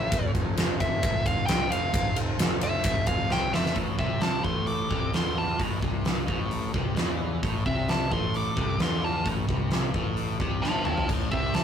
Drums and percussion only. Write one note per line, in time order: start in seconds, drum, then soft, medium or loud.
0.12 kick loud
0.12 ride medium
0.35 kick medium
0.35 ride medium
0.57 snare loud
0.57 ride medium
0.80 kick medium
0.80 ride medium
1.03 kick loud
1.03 ride medium
1.26 kick medium
1.26 ride medium
1.48 snare loud
1.48 ride medium
1.72 ride medium
1.94 kick loud
1.94 ride loud
2.16 ride medium
2.39 snare loud
2.39 ride loud
2.61 ride medium
2.84 kick loud
2.84 ride loud
3.07 kick medium
3.07 ride medium
3.30 snare medium
3.54 snare medium
3.65 snare medium
3.76 kick medium
3.76 open hi-hat soft
3.99 kick medium
4.21 snare medium
4.21 open hi-hat soft
4.44 kick medium
4.67 open hi-hat soft
4.91 kick medium
5.13 snare medium
5.13 open hi-hat soft
5.59 kick loud
5.59 open hi-hat soft
5.82 kick medium
6.05 snare loud
6.05 open hi-hat soft
6.28 kick medium
6.51 open hi-hat soft
6.74 kick medium
6.96 snare medium
6.96 open hi-hat soft
7.43 kick loud
7.43 open hi-hat soft
7.66 kick medium
7.88 snare loud
7.88 open hi-hat soft
8.12 kick medium
8.34 open hi-hat soft
8.57 kick medium
8.79 snare medium
8.79 open hi-hat soft
9.26 kick loud
9.26 open hi-hat soft
9.49 kick medium
9.71 snare medium
9.71 open hi-hat soft
9.94 kick medium
10.17 open hi-hat soft
10.40 kick medium
10.64 snare medium
10.85 mid tom medium
10.97 floor tom medium
11.09 kick loud
11.09 open hi-hat soft
11.09 crash medium
11.32 kick medium
11.54 snare loud
11.54 open hi-hat soft